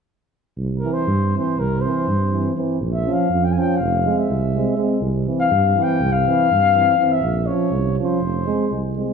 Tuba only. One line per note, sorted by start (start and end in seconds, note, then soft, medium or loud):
0.57 0.85 C2 medium
1.07 1.35 G2 medium
1.58 1.86 C2 medium
2.07 2.47 G2 medium
2.80 3.08 A#1 medium
3.30 3.57 F2 medium
3.79 4.07 F1 medium
4.30 4.69 C2 medium
5.01 5.28 C2 medium
5.51 5.78 G2 medium
6.00 6.28 C2 medium
6.51 6.90 G2 medium
7.21 7.49 A#1 medium
7.71 7.98 C2 medium
8.20 8.48 F1 medium
8.71 9.10 C2 medium